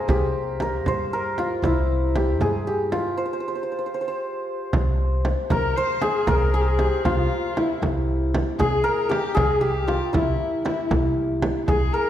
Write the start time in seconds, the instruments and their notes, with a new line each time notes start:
Already playing: santur F4 G#4 A#4 C5
0.08 upright bass C2, santur G4, frame drum
0.60 santur A#4, frame drum
0.85 upright bass G2, santur C5, frame drum
1.13 santur A#4
1.38 santur F4, frame drum
1.62 upright bass C2, santur E4, frame drum
2.15 santur G4, frame drum
2.40 upright bass G2, santur G#4, frame drum
2.67 santur G4
2.92 santur F4, frame drum
3.17 santur C5
3.26 santur C5
3.33 santur C5
3.40 santur C5
3.48 santur C5
3.55 santur C5
3.63 santur C5
3.72 santur C5
3.79 santur C5
3.86 santur C5
3.94 santur C5
4.01 santur C5
4.08 santur C5
4.73 upright bass C2, frame drum
5.25 frame drum
5.50 upright bass C2, kamancheh A#4, santur A#4, frame drum
5.76 kamancheh C5, santur C5
6.02 santur G#4, kamancheh G#4, frame drum
6.27 upright bass C2, santur A#4, kamancheh A#4, frame drum
6.53 kamancheh G#4, santur G#4
6.61 kamancheh G4
6.68 kamancheh G#4
6.79 santur G4, frame drum
7.05 upright bass C2, santur F4, kamancheh F4, frame drum
7.57 santur E4, kamancheh E4, frame drum
7.82 upright bass C2, frame drum
8.35 frame drum
8.59 upright bass C2, kamancheh G#4, santur G#4, frame drum
8.84 santur A#4, kamancheh A#4
9.09 santur G4, kamancheh G4, frame drum
9.35 upright bass C2, santur G#4, kamancheh G#4, frame drum
9.55 kamancheh G#4
9.61 santur G4, kamancheh G4
9.88 santur F4, frame drum
10.13 upright bass C2, santur E4, kamancheh E4, frame drum
10.64 kamancheh E4, santur E4, frame drum
10.91 upright bass C2, frame drum
11.42 frame drum
11.67 upright bass C2, kamancheh G#4, santur G#4, frame drum
11.93 kamancheh A#4, santur A#4